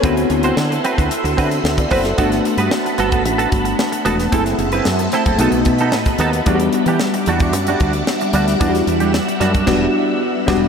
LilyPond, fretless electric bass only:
\new Staff \with { instrumentName = "Fretless electric bass" } { \clef bass \time 4/4 \key e \minor \tempo 4 = 112 d,8 d,8 d8 r16 d,16 r16 d,16 d8 d,8 fis,,8 | g,,8 r16 g,16 r8 g,,8 a,,8 g,,8 r8 e,,8 | fis,,8 fis,,8 fis,8 r16 fis,,16 b,,16 b,,16 b,8 a,8 dis,8 | e,8 r16 e16 r8 e,8 fis,8 d,8 r8 d,8 |
e,8 e,8. r16 fis,8 e,,8 r4 e,,8 | }